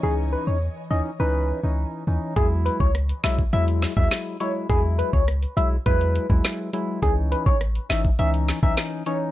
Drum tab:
HH |----------------|x-x-xxx-xxx-x-x-|x-x-xxx-xxx-x-x-|x-x-xxx-xxx-x-x-|
SD |----------------|----r-o---o-o---|----r-------o---|----r-o---o-o---|
BD |----------------|o--o---o---o----|o--o----o--o----|o--o---o---o----|